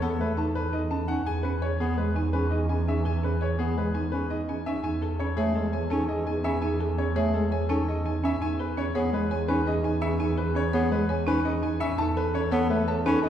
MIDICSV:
0, 0, Header, 1, 6, 480
1, 0, Start_track
1, 0, Key_signature, 4, "major"
1, 0, Tempo, 357143
1, 1707, Time_signature, 5, 2, 24, 8
1, 17862, End_track
2, 0, Start_track
2, 0, Title_t, "Grand piano"
2, 0, Program_c, 0, 0
2, 27, Note_on_c, 0, 69, 88
2, 278, Note_on_c, 0, 71, 68
2, 339, Note_off_c, 0, 69, 0
2, 511, Note_on_c, 0, 81, 60
2, 583, Note_off_c, 0, 71, 0
2, 744, Note_on_c, 0, 71, 80
2, 820, Note_off_c, 0, 81, 0
2, 982, Note_on_c, 0, 75, 65
2, 1058, Note_off_c, 0, 71, 0
2, 1219, Note_on_c, 0, 81, 62
2, 1297, Note_off_c, 0, 75, 0
2, 1452, Note_on_c, 0, 78, 83
2, 1536, Note_off_c, 0, 81, 0
2, 1700, Note_on_c, 0, 80, 83
2, 1774, Note_off_c, 0, 78, 0
2, 1923, Note_on_c, 0, 71, 67
2, 2016, Note_off_c, 0, 80, 0
2, 2176, Note_on_c, 0, 73, 67
2, 2251, Note_off_c, 0, 71, 0
2, 2423, Note_on_c, 0, 68, 78
2, 2495, Note_off_c, 0, 73, 0
2, 2656, Note_on_c, 0, 71, 65
2, 2737, Note_off_c, 0, 68, 0
2, 2899, Note_on_c, 0, 80, 62
2, 2975, Note_off_c, 0, 71, 0
2, 3133, Note_on_c, 0, 71, 78
2, 3216, Note_off_c, 0, 80, 0
2, 3368, Note_on_c, 0, 75, 60
2, 3454, Note_off_c, 0, 71, 0
2, 3620, Note_on_c, 0, 80, 61
2, 3692, Note_off_c, 0, 75, 0
2, 3876, Note_on_c, 0, 76, 71
2, 3937, Note_off_c, 0, 80, 0
2, 4108, Note_on_c, 0, 80, 72
2, 4182, Note_off_c, 0, 76, 0
2, 4359, Note_on_c, 0, 71, 61
2, 4419, Note_off_c, 0, 80, 0
2, 4594, Note_on_c, 0, 73, 61
2, 4663, Note_off_c, 0, 71, 0
2, 4822, Note_on_c, 0, 68, 78
2, 4902, Note_off_c, 0, 73, 0
2, 5076, Note_on_c, 0, 71, 57
2, 5137, Note_off_c, 0, 68, 0
2, 5299, Note_on_c, 0, 80, 60
2, 5382, Note_off_c, 0, 71, 0
2, 5535, Note_on_c, 0, 71, 71
2, 5616, Note_off_c, 0, 80, 0
2, 5782, Note_on_c, 0, 75, 60
2, 5855, Note_off_c, 0, 71, 0
2, 6029, Note_on_c, 0, 80, 55
2, 6097, Note_off_c, 0, 75, 0
2, 6267, Note_on_c, 0, 76, 76
2, 6340, Note_off_c, 0, 80, 0
2, 6498, Note_on_c, 0, 80, 73
2, 6579, Note_off_c, 0, 76, 0
2, 6744, Note_on_c, 0, 69, 64
2, 6816, Note_off_c, 0, 80, 0
2, 6982, Note_on_c, 0, 73, 68
2, 7058, Note_off_c, 0, 69, 0
2, 7214, Note_on_c, 0, 68, 86
2, 7297, Note_off_c, 0, 73, 0
2, 7459, Note_on_c, 0, 69, 64
2, 7534, Note_off_c, 0, 68, 0
2, 7699, Note_on_c, 0, 80, 63
2, 7776, Note_off_c, 0, 69, 0
2, 7931, Note_on_c, 0, 69, 77
2, 8016, Note_off_c, 0, 80, 0
2, 8180, Note_on_c, 0, 75, 64
2, 8253, Note_off_c, 0, 69, 0
2, 8422, Note_on_c, 0, 80, 64
2, 8496, Note_off_c, 0, 75, 0
2, 8658, Note_on_c, 0, 76, 85
2, 8737, Note_off_c, 0, 80, 0
2, 8892, Note_on_c, 0, 80, 78
2, 8976, Note_off_c, 0, 76, 0
2, 9133, Note_on_c, 0, 69, 59
2, 9214, Note_off_c, 0, 80, 0
2, 9385, Note_on_c, 0, 73, 69
2, 9454, Note_off_c, 0, 69, 0
2, 9620, Note_on_c, 0, 68, 87
2, 9698, Note_off_c, 0, 73, 0
2, 9865, Note_on_c, 0, 69, 65
2, 9936, Note_off_c, 0, 68, 0
2, 10102, Note_on_c, 0, 80, 64
2, 10178, Note_off_c, 0, 69, 0
2, 10338, Note_on_c, 0, 69, 87
2, 10417, Note_off_c, 0, 80, 0
2, 10595, Note_on_c, 0, 75, 63
2, 10656, Note_off_c, 0, 69, 0
2, 10828, Note_on_c, 0, 80, 65
2, 10902, Note_off_c, 0, 75, 0
2, 11085, Note_on_c, 0, 76, 84
2, 11139, Note_off_c, 0, 80, 0
2, 11314, Note_on_c, 0, 80, 83
2, 11385, Note_off_c, 0, 76, 0
2, 11559, Note_on_c, 0, 71, 67
2, 11621, Note_off_c, 0, 80, 0
2, 11799, Note_on_c, 0, 73, 74
2, 11863, Note_off_c, 0, 71, 0
2, 12034, Note_on_c, 0, 68, 89
2, 12103, Note_off_c, 0, 73, 0
2, 12280, Note_on_c, 0, 71, 71
2, 12341, Note_off_c, 0, 68, 0
2, 12514, Note_on_c, 0, 80, 72
2, 12584, Note_off_c, 0, 71, 0
2, 12746, Note_on_c, 0, 71, 86
2, 12821, Note_off_c, 0, 80, 0
2, 12998, Note_on_c, 0, 75, 74
2, 13058, Note_off_c, 0, 71, 0
2, 13234, Note_on_c, 0, 80, 68
2, 13303, Note_off_c, 0, 75, 0
2, 13460, Note_on_c, 0, 76, 87
2, 13541, Note_off_c, 0, 80, 0
2, 13707, Note_on_c, 0, 80, 83
2, 13776, Note_off_c, 0, 76, 0
2, 13948, Note_on_c, 0, 71, 68
2, 14019, Note_off_c, 0, 80, 0
2, 14195, Note_on_c, 0, 73, 79
2, 14259, Note_off_c, 0, 71, 0
2, 14435, Note_on_c, 0, 68, 87
2, 14502, Note_off_c, 0, 73, 0
2, 14674, Note_on_c, 0, 71, 77
2, 14742, Note_off_c, 0, 68, 0
2, 14916, Note_on_c, 0, 80, 70
2, 14981, Note_off_c, 0, 71, 0
2, 15155, Note_on_c, 0, 71, 97
2, 15222, Note_off_c, 0, 80, 0
2, 15394, Note_on_c, 0, 75, 74
2, 15462, Note_off_c, 0, 71, 0
2, 15628, Note_on_c, 0, 80, 70
2, 15701, Note_off_c, 0, 75, 0
2, 15866, Note_on_c, 0, 76, 97
2, 15939, Note_off_c, 0, 80, 0
2, 16104, Note_on_c, 0, 81, 100
2, 16179, Note_off_c, 0, 76, 0
2, 16355, Note_on_c, 0, 71, 79
2, 16418, Note_off_c, 0, 81, 0
2, 16595, Note_on_c, 0, 73, 77
2, 16662, Note_off_c, 0, 71, 0
2, 16820, Note_on_c, 0, 69, 97
2, 16902, Note_off_c, 0, 73, 0
2, 17071, Note_on_c, 0, 71, 73
2, 17137, Note_off_c, 0, 69, 0
2, 17307, Note_on_c, 0, 81, 71
2, 17380, Note_off_c, 0, 71, 0
2, 17550, Note_on_c, 0, 71, 98
2, 17619, Note_off_c, 0, 81, 0
2, 17782, Note_on_c, 0, 75, 70
2, 17860, Note_off_c, 0, 71, 0
2, 17862, Note_off_c, 0, 75, 0
2, 17862, End_track
3, 0, Start_track
3, 0, Title_t, "French horn"
3, 0, Program_c, 1, 60
3, 31, Note_on_c, 1, 69, 72
3, 197, Note_off_c, 1, 69, 0
3, 272, Note_on_c, 1, 69, 67
3, 438, Note_off_c, 1, 69, 0
3, 516, Note_on_c, 1, 69, 62
3, 681, Note_off_c, 1, 69, 0
3, 750, Note_on_c, 1, 69, 53
3, 917, Note_off_c, 1, 69, 0
3, 1000, Note_on_c, 1, 69, 47
3, 1163, Note_off_c, 1, 69, 0
3, 1234, Note_on_c, 1, 69, 38
3, 1400, Note_off_c, 1, 69, 0
3, 1706, Note_on_c, 1, 68, 38
3, 1874, Note_off_c, 1, 68, 0
3, 1950, Note_on_c, 1, 68, 45
3, 2117, Note_off_c, 1, 68, 0
3, 2187, Note_on_c, 1, 68, 50
3, 2355, Note_off_c, 1, 68, 0
3, 2429, Note_on_c, 1, 68, 53
3, 2596, Note_off_c, 1, 68, 0
3, 2666, Note_on_c, 1, 68, 57
3, 2834, Note_off_c, 1, 68, 0
3, 2908, Note_on_c, 1, 68, 64
3, 3076, Note_off_c, 1, 68, 0
3, 3140, Note_on_c, 1, 68, 68
3, 3311, Note_off_c, 1, 68, 0
3, 3400, Note_on_c, 1, 68, 70
3, 3563, Note_off_c, 1, 68, 0
3, 3624, Note_on_c, 1, 68, 68
3, 3793, Note_off_c, 1, 68, 0
3, 3871, Note_on_c, 1, 68, 66
3, 4038, Note_off_c, 1, 68, 0
3, 4101, Note_on_c, 1, 68, 65
3, 4271, Note_off_c, 1, 68, 0
3, 4337, Note_on_c, 1, 68, 67
3, 4509, Note_off_c, 1, 68, 0
3, 4584, Note_on_c, 1, 68, 61
3, 4753, Note_off_c, 1, 68, 0
3, 4826, Note_on_c, 1, 68, 59
3, 4994, Note_off_c, 1, 68, 0
3, 5065, Note_on_c, 1, 68, 58
3, 5233, Note_off_c, 1, 68, 0
3, 5311, Note_on_c, 1, 68, 51
3, 5478, Note_off_c, 1, 68, 0
3, 5549, Note_on_c, 1, 68, 45
3, 5717, Note_off_c, 1, 68, 0
3, 5787, Note_on_c, 1, 68, 40
3, 5955, Note_off_c, 1, 68, 0
3, 6038, Note_on_c, 1, 68, 32
3, 6202, Note_off_c, 1, 68, 0
3, 6513, Note_on_c, 1, 68, 34
3, 6679, Note_off_c, 1, 68, 0
3, 6753, Note_on_c, 1, 68, 42
3, 6919, Note_off_c, 1, 68, 0
3, 6993, Note_on_c, 1, 68, 49
3, 7159, Note_off_c, 1, 68, 0
3, 7231, Note_on_c, 1, 68, 55
3, 7398, Note_off_c, 1, 68, 0
3, 7478, Note_on_c, 1, 68, 65
3, 7642, Note_off_c, 1, 68, 0
3, 7720, Note_on_c, 1, 68, 64
3, 7883, Note_off_c, 1, 68, 0
3, 7953, Note_on_c, 1, 68, 70
3, 8119, Note_off_c, 1, 68, 0
3, 8202, Note_on_c, 1, 68, 77
3, 8365, Note_off_c, 1, 68, 0
3, 8433, Note_on_c, 1, 68, 73
3, 8599, Note_off_c, 1, 68, 0
3, 8663, Note_on_c, 1, 68, 77
3, 8832, Note_off_c, 1, 68, 0
3, 8901, Note_on_c, 1, 68, 74
3, 9071, Note_off_c, 1, 68, 0
3, 9146, Note_on_c, 1, 68, 72
3, 9314, Note_off_c, 1, 68, 0
3, 9386, Note_on_c, 1, 68, 73
3, 9555, Note_off_c, 1, 68, 0
3, 9626, Note_on_c, 1, 68, 60
3, 9794, Note_off_c, 1, 68, 0
3, 9856, Note_on_c, 1, 68, 66
3, 10028, Note_off_c, 1, 68, 0
3, 10097, Note_on_c, 1, 68, 63
3, 10269, Note_off_c, 1, 68, 0
3, 10332, Note_on_c, 1, 68, 53
3, 10505, Note_off_c, 1, 68, 0
3, 10589, Note_on_c, 1, 68, 44
3, 10756, Note_off_c, 1, 68, 0
3, 10826, Note_on_c, 1, 68, 39
3, 10994, Note_off_c, 1, 68, 0
3, 11313, Note_on_c, 1, 68, 38
3, 11479, Note_off_c, 1, 68, 0
3, 11557, Note_on_c, 1, 68, 47
3, 11721, Note_off_c, 1, 68, 0
3, 11790, Note_on_c, 1, 68, 49
3, 11957, Note_off_c, 1, 68, 0
3, 12043, Note_on_c, 1, 68, 58
3, 12205, Note_off_c, 1, 68, 0
3, 12282, Note_on_c, 1, 68, 67
3, 12444, Note_off_c, 1, 68, 0
3, 12527, Note_on_c, 1, 68, 70
3, 12688, Note_off_c, 1, 68, 0
3, 12764, Note_on_c, 1, 68, 76
3, 12926, Note_off_c, 1, 68, 0
3, 13011, Note_on_c, 1, 68, 82
3, 13170, Note_off_c, 1, 68, 0
3, 13228, Note_on_c, 1, 68, 78
3, 13396, Note_off_c, 1, 68, 0
3, 13475, Note_on_c, 1, 68, 89
3, 13640, Note_off_c, 1, 68, 0
3, 13719, Note_on_c, 1, 68, 82
3, 13883, Note_off_c, 1, 68, 0
3, 13963, Note_on_c, 1, 68, 75
3, 14126, Note_off_c, 1, 68, 0
3, 14194, Note_on_c, 1, 68, 84
3, 14359, Note_off_c, 1, 68, 0
3, 14442, Note_on_c, 1, 68, 72
3, 14605, Note_off_c, 1, 68, 0
3, 14672, Note_on_c, 1, 68, 70
3, 14838, Note_off_c, 1, 68, 0
3, 14913, Note_on_c, 1, 68, 65
3, 15079, Note_off_c, 1, 68, 0
3, 15157, Note_on_c, 1, 68, 60
3, 15321, Note_off_c, 1, 68, 0
3, 15400, Note_on_c, 1, 68, 50
3, 15563, Note_off_c, 1, 68, 0
3, 15643, Note_on_c, 1, 68, 41
3, 15805, Note_off_c, 1, 68, 0
3, 16110, Note_on_c, 1, 69, 39
3, 16277, Note_off_c, 1, 69, 0
3, 16355, Note_on_c, 1, 69, 49
3, 16520, Note_off_c, 1, 69, 0
3, 16591, Note_on_c, 1, 69, 59
3, 16758, Note_off_c, 1, 69, 0
3, 16833, Note_on_c, 1, 69, 62
3, 16999, Note_off_c, 1, 69, 0
3, 17068, Note_on_c, 1, 69, 72
3, 17235, Note_off_c, 1, 69, 0
3, 17306, Note_on_c, 1, 69, 76
3, 17474, Note_off_c, 1, 69, 0
3, 17547, Note_on_c, 1, 69, 83
3, 17715, Note_off_c, 1, 69, 0
3, 17777, Note_on_c, 1, 69, 85
3, 17862, Note_off_c, 1, 69, 0
3, 17862, End_track
4, 0, Start_track
4, 0, Title_t, "Marimba"
4, 0, Program_c, 2, 12
4, 503, Note_on_c, 2, 63, 78
4, 817, Note_off_c, 2, 63, 0
4, 983, Note_on_c, 2, 63, 70
4, 1222, Note_on_c, 2, 61, 81
4, 1297, Note_off_c, 2, 63, 0
4, 1461, Note_on_c, 2, 63, 68
4, 1537, Note_off_c, 2, 61, 0
4, 1707, Note_on_c, 2, 68, 68
4, 1777, Note_off_c, 2, 63, 0
4, 1947, Note_on_c, 2, 61, 77
4, 2019, Note_off_c, 2, 68, 0
4, 2180, Note_on_c, 2, 73, 73
4, 2259, Note_off_c, 2, 61, 0
4, 2496, Note_off_c, 2, 73, 0
4, 2904, Note_on_c, 2, 63, 75
4, 3218, Note_off_c, 2, 63, 0
4, 3386, Note_on_c, 2, 63, 60
4, 3620, Note_on_c, 2, 61, 75
4, 3699, Note_off_c, 2, 63, 0
4, 3864, Note_on_c, 2, 63, 59
4, 3937, Note_off_c, 2, 61, 0
4, 4102, Note_on_c, 2, 68, 66
4, 4178, Note_off_c, 2, 63, 0
4, 4347, Note_on_c, 2, 61, 75
4, 4417, Note_off_c, 2, 68, 0
4, 4584, Note_on_c, 2, 73, 69
4, 4659, Note_off_c, 2, 61, 0
4, 4898, Note_off_c, 2, 73, 0
4, 5308, Note_on_c, 2, 63, 68
4, 5619, Note_off_c, 2, 63, 0
4, 5792, Note_on_c, 2, 63, 64
4, 6037, Note_on_c, 2, 61, 72
4, 6101, Note_off_c, 2, 63, 0
4, 6278, Note_on_c, 2, 63, 62
4, 6342, Note_off_c, 2, 61, 0
4, 6497, Note_off_c, 2, 63, 0
4, 6513, Note_on_c, 2, 63, 68
4, 6755, Note_on_c, 2, 68, 63
4, 6821, Note_off_c, 2, 63, 0
4, 6994, Note_on_c, 2, 61, 78
4, 7062, Note_off_c, 2, 68, 0
4, 7229, Note_on_c, 2, 73, 80
4, 7301, Note_off_c, 2, 61, 0
4, 7540, Note_off_c, 2, 73, 0
4, 7710, Note_on_c, 2, 73, 63
4, 7950, Note_on_c, 2, 63, 81
4, 8020, Note_off_c, 2, 73, 0
4, 8260, Note_off_c, 2, 63, 0
4, 8427, Note_on_c, 2, 63, 61
4, 8669, Note_on_c, 2, 61, 84
4, 8739, Note_off_c, 2, 63, 0
4, 8905, Note_on_c, 2, 63, 68
4, 8979, Note_off_c, 2, 61, 0
4, 9147, Note_on_c, 2, 68, 66
4, 9218, Note_off_c, 2, 63, 0
4, 9389, Note_on_c, 2, 61, 73
4, 9459, Note_off_c, 2, 68, 0
4, 9625, Note_on_c, 2, 73, 85
4, 9700, Note_off_c, 2, 61, 0
4, 9938, Note_off_c, 2, 73, 0
4, 10109, Note_on_c, 2, 73, 64
4, 10346, Note_on_c, 2, 63, 79
4, 10420, Note_off_c, 2, 73, 0
4, 10658, Note_off_c, 2, 63, 0
4, 10827, Note_on_c, 2, 63, 67
4, 11071, Note_on_c, 2, 61, 85
4, 11139, Note_off_c, 2, 63, 0
4, 11314, Note_on_c, 2, 63, 75
4, 11380, Note_off_c, 2, 61, 0
4, 11552, Note_on_c, 2, 68, 68
4, 11621, Note_off_c, 2, 63, 0
4, 11794, Note_on_c, 2, 61, 83
4, 11861, Note_off_c, 2, 68, 0
4, 12031, Note_on_c, 2, 73, 88
4, 12101, Note_off_c, 2, 61, 0
4, 12340, Note_off_c, 2, 73, 0
4, 12513, Note_on_c, 2, 73, 67
4, 12751, Note_on_c, 2, 63, 86
4, 12821, Note_off_c, 2, 73, 0
4, 12992, Note_on_c, 2, 61, 70
4, 13060, Note_off_c, 2, 63, 0
4, 13231, Note_on_c, 2, 63, 73
4, 13301, Note_off_c, 2, 61, 0
4, 13467, Note_on_c, 2, 61, 97
4, 13540, Note_off_c, 2, 63, 0
4, 13705, Note_on_c, 2, 63, 76
4, 13779, Note_off_c, 2, 61, 0
4, 13946, Note_on_c, 2, 68, 71
4, 14018, Note_off_c, 2, 63, 0
4, 14182, Note_on_c, 2, 61, 90
4, 14258, Note_off_c, 2, 68, 0
4, 14427, Note_on_c, 2, 73, 93
4, 14497, Note_off_c, 2, 61, 0
4, 14739, Note_off_c, 2, 73, 0
4, 14907, Note_on_c, 2, 73, 68
4, 15142, Note_on_c, 2, 63, 92
4, 15219, Note_off_c, 2, 73, 0
4, 15390, Note_on_c, 2, 61, 83
4, 15457, Note_off_c, 2, 63, 0
4, 15629, Note_on_c, 2, 63, 73
4, 15700, Note_off_c, 2, 61, 0
4, 15865, Note_on_c, 2, 61, 98
4, 15940, Note_off_c, 2, 63, 0
4, 16110, Note_on_c, 2, 63, 79
4, 16178, Note_off_c, 2, 61, 0
4, 16355, Note_on_c, 2, 69, 76
4, 16420, Note_off_c, 2, 63, 0
4, 16589, Note_on_c, 2, 61, 83
4, 16662, Note_off_c, 2, 69, 0
4, 16831, Note_on_c, 2, 73, 92
4, 16900, Note_off_c, 2, 61, 0
4, 17140, Note_off_c, 2, 73, 0
4, 17316, Note_on_c, 2, 73, 74
4, 17553, Note_on_c, 2, 63, 101
4, 17622, Note_off_c, 2, 73, 0
4, 17795, Note_on_c, 2, 61, 78
4, 17861, Note_off_c, 2, 63, 0
4, 17862, Note_off_c, 2, 61, 0
4, 17862, End_track
5, 0, Start_track
5, 0, Title_t, "Bass clarinet"
5, 0, Program_c, 3, 71
5, 27, Note_on_c, 3, 59, 84
5, 207, Note_off_c, 3, 59, 0
5, 262, Note_on_c, 3, 57, 70
5, 444, Note_off_c, 3, 57, 0
5, 1469, Note_on_c, 3, 61, 78
5, 1648, Note_off_c, 3, 61, 0
5, 2426, Note_on_c, 3, 59, 82
5, 2606, Note_off_c, 3, 59, 0
5, 2660, Note_on_c, 3, 56, 62
5, 2842, Note_off_c, 3, 56, 0
5, 3141, Note_on_c, 3, 61, 71
5, 3323, Note_off_c, 3, 61, 0
5, 3869, Note_on_c, 3, 61, 76
5, 4048, Note_off_c, 3, 61, 0
5, 4826, Note_on_c, 3, 59, 76
5, 5006, Note_off_c, 3, 59, 0
5, 5067, Note_on_c, 3, 56, 62
5, 5247, Note_off_c, 3, 56, 0
5, 5555, Note_on_c, 3, 61, 70
5, 5732, Note_off_c, 3, 61, 0
5, 6270, Note_on_c, 3, 61, 74
5, 6449, Note_off_c, 3, 61, 0
5, 7227, Note_on_c, 3, 57, 82
5, 7407, Note_off_c, 3, 57, 0
5, 7458, Note_on_c, 3, 56, 66
5, 7641, Note_off_c, 3, 56, 0
5, 7948, Note_on_c, 3, 61, 83
5, 8128, Note_off_c, 3, 61, 0
5, 8660, Note_on_c, 3, 61, 84
5, 8843, Note_off_c, 3, 61, 0
5, 9620, Note_on_c, 3, 57, 84
5, 9803, Note_off_c, 3, 57, 0
5, 9864, Note_on_c, 3, 56, 68
5, 10045, Note_off_c, 3, 56, 0
5, 10346, Note_on_c, 3, 61, 82
5, 10526, Note_off_c, 3, 61, 0
5, 11064, Note_on_c, 3, 61, 83
5, 11245, Note_off_c, 3, 61, 0
5, 12027, Note_on_c, 3, 59, 85
5, 12207, Note_off_c, 3, 59, 0
5, 12265, Note_on_c, 3, 56, 73
5, 12445, Note_off_c, 3, 56, 0
5, 12754, Note_on_c, 3, 61, 88
5, 12931, Note_off_c, 3, 61, 0
5, 13468, Note_on_c, 3, 61, 85
5, 13648, Note_off_c, 3, 61, 0
5, 14431, Note_on_c, 3, 59, 92
5, 14610, Note_off_c, 3, 59, 0
5, 14665, Note_on_c, 3, 56, 77
5, 14846, Note_off_c, 3, 56, 0
5, 15149, Note_on_c, 3, 61, 88
5, 15328, Note_off_c, 3, 61, 0
5, 15875, Note_on_c, 3, 61, 89
5, 16052, Note_off_c, 3, 61, 0
5, 16826, Note_on_c, 3, 59, 102
5, 17006, Note_off_c, 3, 59, 0
5, 17072, Note_on_c, 3, 57, 82
5, 17250, Note_off_c, 3, 57, 0
5, 17550, Note_on_c, 3, 61, 97
5, 17729, Note_off_c, 3, 61, 0
5, 17862, End_track
6, 0, Start_track
6, 0, Title_t, "Double bass section"
6, 0, Program_c, 4, 48
6, 0, Note_on_c, 4, 40, 69
6, 1557, Note_off_c, 4, 40, 0
6, 1704, Note_on_c, 4, 40, 67
6, 6356, Note_off_c, 4, 40, 0
6, 6512, Note_on_c, 4, 40, 64
6, 11159, Note_off_c, 4, 40, 0
6, 11317, Note_on_c, 4, 40, 68
6, 15962, Note_off_c, 4, 40, 0
6, 16110, Note_on_c, 4, 40, 76
6, 17862, Note_off_c, 4, 40, 0
6, 17862, End_track
0, 0, End_of_file